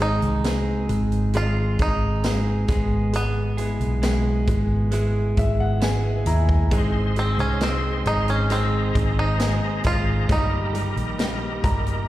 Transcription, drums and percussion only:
0.00 closed hi-hat
0.22 closed hi-hat
0.44 snare, closed hi-hat, tambourine
0.89 closed hi-hat
1.12 closed hi-hat
1.33 closed hi-hat
1.79 kick, closed hi-hat
2.24 snare, closed hi-hat, tambourine
2.68 kick, snare, closed hi-hat
3.13 closed hi-hat
3.58 closed hi-hat
3.81 closed hi-hat
4.03 snare, closed hi-hat, tambourine
4.47 kick, closed hi-hat
4.92 closed hi-hat
5.37 kick, closed hi-hat
5.81 snare, closed hi-hat, tambourine
6.26 closed hi-hat
6.49 kick
6.71 kick, closed hi-hat
7.16 closed hi-hat
7.39 closed hi-hat
7.61 snare, closed hi-hat, tambourine
8.06 closed hi-hat
8.28 closed hi-hat
8.50 closed hi-hat
8.95 kick, closed hi-hat
9.40 snare, closed hi-hat, tambourine
9.84 kick, snare, closed hi-hat
10.29 kick, closed hi-hat
10.75 closed hi-hat
10.97 closed hi-hat
11.19 snare, closed hi-hat, tambourine
11.64 kick, closed hi-hat
11.87 closed hi-hat

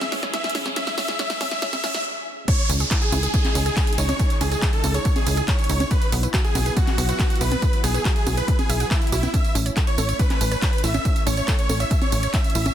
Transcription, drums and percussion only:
0.01 snare, closed hi-hat, high conga
0.12 snare, open hi-hat
0.23 snare, closed hi-hat
0.34 snare, closed hi-hat
0.44 snare, closed hi-hat
0.50 closed hi-hat
0.55 snare, open hi-hat
0.66 snare, closed hi-hat, high conga
0.76 snare, closed hi-hat
0.87 snare, closed hi-hat
0.98 snare, open hi-hat
1.08 snare, closed hi-hat
1.19 snare, closed hi-hat
1.30 snare, closed hi-hat
1.41 snare, open hi-hat, high conga
1.51 snare, closed hi-hat
1.62 snare, closed hi-hat
1.73 snare, closed hi-hat, high conga
1.84 snare, open hi-hat
1.94 snare, closed hi-hat
2.48 kick, closed hi-hat, crash, tambourine
2.59 closed hi-hat, tambourine
2.69 open hi-hat, tambourine
2.80 closed hi-hat, tambourine
2.91 kick, clap, closed hi-hat, tambourine
3.02 closed hi-hat, tambourine
3.12 open hi-hat, tambourine, high conga
3.23 closed hi-hat, tambourine
3.34 kick, closed hi-hat, tambourine
3.45 clap, closed hi-hat, tambourine, high conga
3.55 open hi-hat, tambourine
3.66 closed hi-hat, tambourine
3.77 kick, clap, closed hi-hat, tambourine
3.87 closed hi-hat, tambourine
3.93 closed hi-hat
3.98 open hi-hat, tambourine
4.09 closed hi-hat, tambourine, high conga
4.19 kick, closed hi-hat, tambourine
4.30 closed hi-hat, tambourine
4.41 open hi-hat, tambourine
4.52 closed hi-hat, tambourine
4.62 kick, clap, closed hi-hat, tambourine
4.73 closed hi-hat, tambourine
4.84 open hi-hat, tambourine, high conga
4.94 closed hi-hat, tambourine
5.05 kick, closed hi-hat, tambourine
5.16 closed hi-hat, tambourine, high conga
5.27 open hi-hat, tambourine
5.37 closed hi-hat, tambourine
5.48 kick, clap, closed hi-hat, tambourine
5.59 closed hi-hat, tambourine
5.64 closed hi-hat
5.69 open hi-hat, tambourine
5.80 closed hi-hat, tambourine, high conga
5.91 kick, closed hi-hat, tambourine
6.02 closed hi-hat, tambourine
6.12 open hi-hat, tambourine
6.23 closed hi-hat, tambourine
6.34 kick, clap, closed hi-hat, tambourine
6.45 closed hi-hat, tambourine
6.55 open hi-hat, tambourine, high conga
6.66 closed hi-hat, tambourine
6.77 kick, closed hi-hat, tambourine
6.87 clap, closed hi-hat, tambourine, high conga
6.98 open hi-hat, tambourine
7.09 closed hi-hat, tambourine
7.19 kick, clap, closed hi-hat, tambourine
7.30 closed hi-hat, tambourine
7.36 closed hi-hat
7.41 open hi-hat, tambourine
7.52 closed hi-hat, tambourine, high conga
7.62 kick, closed hi-hat, tambourine
7.73 closed hi-hat, tambourine
7.84 open hi-hat, tambourine
7.95 closed hi-hat, tambourine
8.05 kick, clap, closed hi-hat, tambourine
8.16 closed hi-hat, tambourine
8.27 open hi-hat, tambourine, high conga
8.37 closed hi-hat, tambourine
8.48 kick, closed hi-hat, tambourine
8.59 closed hi-hat, tambourine, high conga
8.70 open hi-hat, tambourine
8.80 closed hi-hat, tambourine
8.91 kick, clap, closed hi-hat, tambourine
9.02 closed hi-hat, tambourine
9.07 closed hi-hat
9.12 open hi-hat, tambourine
9.23 closed hi-hat, tambourine, high conga
9.34 kick, closed hi-hat, tambourine
9.45 closed hi-hat, tambourine
9.55 open hi-hat, tambourine
9.66 closed hi-hat, tambourine
9.77 kick, clap, closed hi-hat, tambourine
9.87 closed hi-hat, tambourine
9.98 open hi-hat, tambourine, high conga
10.09 closed hi-hat, tambourine
10.19 kick, closed hi-hat, tambourine
10.30 clap, closed hi-hat, tambourine, high conga
10.41 open hi-hat, tambourine
10.52 closed hi-hat, tambourine
10.62 kick, clap, closed hi-hat, tambourine
10.73 closed hi-hat, tambourine
10.78 closed hi-hat
10.84 open hi-hat, tambourine
10.94 closed hi-hat, tambourine, high conga
11.05 kick, closed hi-hat, tambourine
11.16 closed hi-hat, tambourine
11.27 open hi-hat, tambourine
11.37 closed hi-hat, tambourine
11.48 kick, clap, closed hi-hat, tambourine
11.59 closed hi-hat, tambourine
11.69 open hi-hat, tambourine, high conga
11.80 closed hi-hat, tambourine
11.91 kick, closed hi-hat, tambourine
12.02 closed hi-hat, tambourine, high conga
12.12 open hi-hat, tambourine
12.23 closed hi-hat, tambourine
12.34 kick, clap, closed hi-hat, tambourine
12.44 closed hi-hat, tambourine
12.50 closed hi-hat
12.55 open hi-hat, tambourine
12.66 closed hi-hat, tambourine, high conga

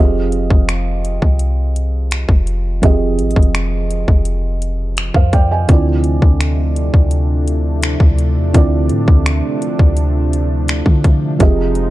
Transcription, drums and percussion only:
0.32 closed hi-hat
0.50 kick
0.69 finger snap, closed hi-hat
1.05 closed hi-hat
1.22 kick
1.39 closed hi-hat
1.76 closed hi-hat
2.11 finger snap, closed hi-hat
2.29 kick
2.47 closed hi-hat
2.83 kick, closed hi-hat
3.19 closed hi-hat
3.31 closed hi-hat
3.36 kick
3.43 closed hi-hat
3.55 finger snap, closed hi-hat
3.91 closed hi-hat
4.08 kick
4.25 closed hi-hat
4.62 closed hi-hat
4.97 finger snap, closed hi-hat
5.14 kick
5.33 kick, closed hi-hat
5.69 kick, closed hi-hat
6.04 closed hi-hat
6.22 kick
6.41 finger snap, closed hi-hat
6.76 closed hi-hat
6.94 kick
7.11 closed hi-hat
7.48 closed hi-hat
7.82 finger snap, closed hi-hat
8.00 kick
8.18 closed hi-hat
8.54 kick, closed hi-hat
8.89 closed hi-hat
9.08 kick
9.26 finger snap, closed hi-hat
9.62 closed hi-hat
9.79 kick
9.97 closed hi-hat
10.33 closed hi-hat
10.68 finger snap, closed hi-hat
10.86 kick
11.04 kick, closed hi-hat
11.40 kick, closed hi-hat
11.75 closed hi-hat

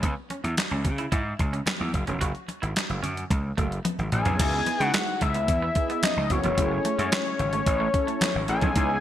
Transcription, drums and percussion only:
0.03 kick, closed hi-hat
0.30 closed hi-hat, muted conga
0.44 closed hi-hat
0.57 snare, clap, closed hi-hat, high conga
0.71 closed hi-hat
0.85 kick, closed hi-hat, low conga
0.98 closed hi-hat
1.12 kick, closed hi-hat, muted conga
1.39 kick, closed hi-hat
1.54 closed hi-hat
1.66 snare, clap, closed hi-hat, high conga
1.80 high conga
1.94 kick, closed hi-hat
2.07 closed hi-hat, high conga
2.21 kick, closed hi-hat
2.35 closed hi-hat
2.48 closed hi-hat, muted conga
2.63 closed hi-hat
2.76 snare, clap, closed hi-hat, high conga
2.90 closed hi-hat
3.04 closed hi-hat, low conga
3.17 closed hi-hat
3.30 kick, closed hi-hat, muted conga
3.58 kick, closed hi-hat
3.72 closed hi-hat
3.85 closed hi-hat, high tom, high conga
3.99 closed hi-hat, high conga
4.12 closed hi-hat, mid tom
4.25 closed hi-hat, floor tom, high conga
4.39 kick, closed hi-hat, crash
4.66 closed hi-hat, muted conga
4.81 closed hi-hat
4.94 snare, clap, closed hi-hat, high conga
5.07 closed hi-hat
5.21 kick, closed hi-hat, low conga
5.34 closed hi-hat
5.48 kick, closed hi-hat, muted conga
5.75 kick, closed hi-hat
5.90 closed hi-hat
6.03 snare, clap, closed hi-hat, high conga
6.17 high conga
6.30 kick, closed hi-hat
6.44 closed hi-hat, high conga
6.58 kick, closed hi-hat
6.85 closed hi-hat, muted conga
6.99 closed hi-hat
7.12 snare, clap, closed hi-hat, high conga
7.25 closed hi-hat
7.39 closed hi-hat, muted conga, low conga
7.53 closed hi-hat
7.66 kick, closed hi-hat, muted conga
7.94 kick, closed hi-hat
8.08 closed hi-hat
8.21 snare, clap, closed hi-hat, high conga
8.34 high conga
8.48 closed hi-hat
8.61 kick, closed hi-hat, high conga
8.76 kick, closed hi-hat

